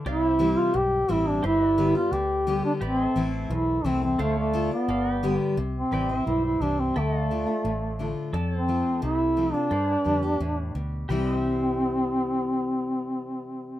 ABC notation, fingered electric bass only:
X:1
M:4/4
L:1/8
Q:1/4=174
K:C
V:1 name="Fingered electric bass" clef=bass
C,,4 B,,,2 A,,,2 | G,,,4 D,,4 | A,,,2 A,,,2 B,,,2 C,,2 | D,,4 G,,,4 |
C,,2 A,,,2 B,,,2 C,,2 | D,,4 A,,,4 | F,,4 C,,4 | G,,2 F,,2 E,,2 D,,2 |
C,,8- | C,,8 |]